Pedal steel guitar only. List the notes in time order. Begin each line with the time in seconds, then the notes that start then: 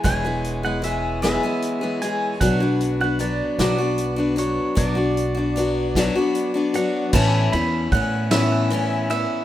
0.04 G#5
0.65 F#5
0.84 E5
1.23 E5
2.02 G#5
2.41 F#5
3.01 F#5
3.21 D5
3.60 D5
4.39 C#5
4.78 D5
6.00 C#5
6.76 F#5
7.15 A5
7.53 B5
7.92 F#5
8.32 E5
9.11 E5